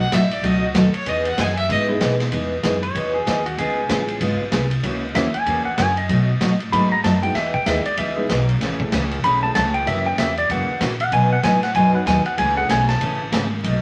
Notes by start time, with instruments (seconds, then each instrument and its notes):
Already playing: upright bass B1
0.00 fiddle F#5
0.12 upright bass A1, steel-string acoustic guitar B2 F#3 A3 D#4 F#4, fiddle E5, kick, snare, hi-hat pedal, ride
0.31 fiddle D5, ride
0.43 upright bass C#2, steel-string acoustic guitar B2 F#3 A3 D#4 F#4, fiddle D#5, kick, ride
0.64 fiddle F#4
0.74 upright bass D#2, steel-string acoustic guitar B2 F#3 A3 D#4 F#4, fiddle A4, kick, snare, hi-hat pedal, ride
0.94 fiddle C#5, ride
1.06 upright bass E2, steel-string acoustic guitar E3 B3 D#4 G#4, fiddle D#5, kick, ride
1.25 fiddle F#5, ride
1.38 upright bass F#2, steel-string acoustic guitar E3 B3 D#4 G#4, fiddle G#5, kick, snare, hi-hat pedal, ride
1.57 fiddle E5, ride
1.69 upright bass G#2, steel-string acoustic guitar E3 B3 D#4 G#4, fiddle D#5, kick, ride
1.88 upright piano G#3 B3 D#4 E4 G#4
2.00 upright bass B2, steel-string acoustic guitar E3 B3 D#4 G#4, kick, snare, hi-hat pedal, ride
2.20 snare, ride
2.32 upright bass E2, steel-string acoustic guitar E3 B3 D#4 G#4, upright piano G#3 B3 D#4 E4 G#4, kick, ride
2.63 upright bass F#2, steel-string acoustic guitar E3 B3 D#4 G#4, upright piano G#3 B3 D#4 E4 G#4, kick, snare, hi-hat pedal, ride
2.83 electric slide guitar C#5, ride
2.95 upright bass E2, steel-string acoustic guitar E3 B3 D#4 G#4, kick, ride
3.14 electric slide guitar G#4
3.26 upright bass D#2, steel-string acoustic guitar E3 B3 D#4 G#4, kick, snare, hi-hat pedal, ride
3.46 electric slide guitar F#4, ride
3.58 upright bass C#2, steel-string acoustic guitar C#3 G#3 B3 F4 G#4, electric slide guitar G#4, kick, ride
3.89 upright bass A1, steel-string acoustic guitar C#3 G#3 B3 F4 G#4, upright piano G#3 B3 C#4 F4 G#4, kick, snare, hi-hat pedal, ride
4.08 ride
4.21 upright bass G#1, steel-string acoustic guitar C#3 G#3 B3 F4 G#4, kick, ride
4.40 muted upright bass stroke
4.52 upright bass C2, steel-string acoustic guitar C#3 G#3 B3 F4 G#4, kick, snare, hi-hat pedal, ride
4.71 ride
4.83 upright bass C#2, steel-string acoustic guitar C#3 E3 A#3 C#4 F#4, upright piano A#3 C#4 E4 F#4 A#4, kick, ride
5.14 upright bass D#2, steel-string acoustic guitar C#3 E3 A#3 C#4 F#4, upright piano A#3 C#4 E4 F#4 A#4, electric slide guitar E5, kick, snare, hi-hat pedal, ride
5.34 electric slide guitar G#5, muted upright bass stroke, ride
5.46 upright bass E2, steel-string acoustic guitar C#3 E3 A#3 C#4 F#4, kick, ride
5.65 electric slide guitar F#5, muted upright bass stroke
5.78 upright bass F#2, steel-string acoustic guitar C#3 E3 A#3 C#4 F#4, electric slide guitar G#5, kick, snare, hi-hat pedal, ride
5.97 electric slide guitar D#5, ride
6.09 steel-string acoustic guitar B2 F#3 A3 D#4 F#4, upright bass B2, kick, ride
6.41 upright bass A2, steel-string acoustic guitar B2 F#3 A3 D#4 F#4, kick, snare, hi-hat pedal, ride
6.60 ride
6.72 upright bass G#2, steel-string acoustic guitar B2 F#3 A3 D#4 F#4, upright piano A3 B3 D#4 F#4 A4, electric slide guitar B5, kick, ride
6.92 electric slide guitar A#5
7.04 upright bass F#2, steel-string acoustic guitar B2 F#3 A3 D#4 F#4, electric slide guitar A5, kick, snare, hi-hat pedal, ride
7.22 upright piano G#3 B3 D#4 E4 F#4, electric slide guitar G5, ride
7.35 upright bass E2, steel-string acoustic guitar E3 B3 D#4 G#4, electric slide guitar E5, kick, snare, ride
7.54 electric slide guitar G5, kick
7.66 upright bass D#2, steel-string acoustic guitar E3 B3 D#4 G#4, upright piano G#3 B3 D#4 E4 G#4, electric slide guitar E5, kick, snare, hi-hat pedal, ride
7.85 electric slide guitar D5, muted upright bass stroke, ride
7.97 upright bass C#2, steel-string acoustic guitar E3 B3 D#4 G#4, electric slide guitar E5, kick, ride
8.16 upright piano G#3 B3 D#4 E4 G#4
8.29 upright bass B1, steel-string acoustic guitar E3 B3 D#4 G#4, kick, snare, hi-hat pedal, ride
8.49 ride
8.61 upright bass A1, steel-string acoustic guitar C#3 E3 A3 C#4 G#4, kick, snare, ride
8.79 upright piano A3 C#4 E4 G#4 A4, kick
8.92 upright bass C#2, steel-string acoustic guitar C#3 E3 A3 C#4 G#4, kick, snare, hi-hat pedal, ride
9.11 ride
9.24 upright bass B1, steel-string acoustic guitar C#3 E3 A3 C#4 G#4, electric slide guitar B5, kick, ride
9.43 upright piano A3 C#4 E4 G#4 A4, electric slide guitar A5
9.55 upright bass C#2, steel-string acoustic guitar C#3 E3 A3 C#4 G#4, electric slide guitar A5, kick, snare, hi-hat pedal, ride
9.74 electric slide guitar G5, ride
9.86 upright bass F#2, steel-string acoustic guitar C#3 E3 A#3 C#4 F#4, upright piano A#3 C#4 E4 F#4 A#4, electric slide guitar E5, kick, ride
10.06 electric slide guitar G5
10.18 upright bass E2, steel-string acoustic guitar C#3 E3 A#3 C#4 F#4, electric slide guitar E5, kick, snare, hi-hat pedal, ride
10.37 electric slide guitar D5, ride
10.49 upright bass F#2, steel-string acoustic guitar C#3 E3 A#3 C#4 F#4, electric slide guitar F#5, kick, ride
10.69 muted upright bass stroke
10.81 upright bass A#2, steel-string acoustic guitar C#3 E3 A#3 C#4 F#4, kick, snare, hi-hat pedal, ride
11.00 electric slide guitar F#5, ride
11.12 upright bass B2, steel-string acoustic guitar B2 F#3 B3 D#4 F#4, electric slide guitar G#5, kick, ride
11.33 electric slide guitar F#5
11.43 upright bass A2, steel-string acoustic guitar B2 F#3 B3 D#4 F#4, electric slide guitar G#5, kick, snare, hi-hat pedal, ride
11.63 electric slide guitar F#5, snare, ride
11.75 upright bass F#2, steel-string acoustic guitar B2 F#3 B3 D#4 F#4, electric slide guitar G#5, kick, ride
11.93 upright piano F#3 B3 D#4 F#4 B4, electric slide guitar F#5
12.06 upright bass D#2, steel-string acoustic guitar B2 F#3 B3 D#4 F#4, electric slide guitar G#5, kick, snare, hi-hat pedal, ride
12.25 electric slide guitar F#5, ride
12.38 upright bass C#2, steel-string acoustic guitar C#3 E3 A3 C#4 G#4, electric slide guitar G#5, kick, ride
12.56 upright piano A3 C#4 E4 G#4 A4, electric slide guitar F#5
12.69 upright bass B1, steel-string acoustic guitar C#3 E3 A3 C#4 G#4, electric slide guitar G#5, kick, snare, hi-hat pedal, ride
12.89 electric slide guitar A5, snare, ride
13.01 upright bass A1, steel-string acoustic guitar C#3 E3 A3 C#4 G#4, kick, ride
13.32 upright bass G#1, steel-string acoustic guitar C#3 E3 A3 C#4 G#4, kick, snare, hi-hat pedal, ride
13.64 upright bass B1, steel-string acoustic guitar B2 F#3 A3 D#4 F#4, kick, ride